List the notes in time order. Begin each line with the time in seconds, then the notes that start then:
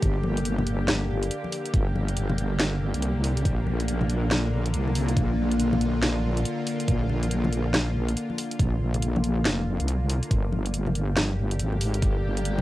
Already playing: D3 A#3 G4
0.02 G1, kick, closed hi-hat
0.23 high conga
0.37 closed hi-hat
0.45 closed hi-hat
0.58 high conga, low conga
0.67 closed hi-hat
0.88 snare, closed hi-hat, high conga
1.23 closed hi-hat
1.31 closed hi-hat
1.44 high conga
1.52 open hi-hat
1.66 closed hi-hat
1.74 G1, kick, closed hi-hat
1.96 high conga
2.09 closed hi-hat
2.17 closed hi-hat
2.29 high conga, low conga
2.38 closed hi-hat
2.60 snare, closed hi-hat
2.94 C2, closed hi-hat
3.02 closed hi-hat
3.24 open hi-hat
3.37 closed hi-hat
3.45 A#1 F4, kick, closed hi-hat
3.67 high conga
3.80 closed hi-hat
3.88 closed hi-hat
4.01 high conga, low conga
4.10 closed hi-hat
4.31 snare, closed hi-hat, high conga
4.66 closed hi-hat
4.74 C2, closed hi-hat
4.87 high conga
4.95 open hi-hat
5.09 closed hi-hat
5.17 A#1, kick, closed hi-hat
5.51 closed hi-hat
5.60 closed hi-hat
5.73 high conga, low conga
5.81 closed hi-hat
6.03 snare, closed hi-hat
6.37 closed hi-hat
6.45 closed hi-hat
6.67 open hi-hat
6.80 closed hi-hat
6.88 A#1, kick, closed hi-hat
7.09 high conga
7.23 closed hi-hat
7.31 closed hi-hat
7.44 high conga, low conga
7.53 closed hi-hat
7.73 snare, closed hi-hat, high conga
8.08 closed hi-hat
8.17 closed hi-hat
8.30 high conga
8.38 open hi-hat
8.51 closed hi-hat
8.59 A#1, kick, closed hi-hat
8.94 closed hi-hat, low conga
9.02 closed hi-hat
9.16 high conga, low conga
9.24 closed hi-hat
9.45 F1, snare, closed hi-hat
9.80 C2, closed hi-hat
9.88 closed hi-hat
10.10 open hi-hat
10.23 closed hi-hat
10.31 G1 D3 A#3 G4, kick, closed hi-hat
10.52 high conga
10.66 closed hi-hat
10.74 closed hi-hat
10.86 high conga, low conga
10.95 closed hi-hat
11.17 snare, closed hi-hat, high conga
11.51 closed hi-hat
11.60 G#1, closed hi-hat
11.72 high conga
11.81 open hi-hat
11.94 closed hi-hat
12.02 G1, kick, closed hi-hat
12.37 closed hi-hat
12.45 closed hi-hat
12.58 high conga, low conga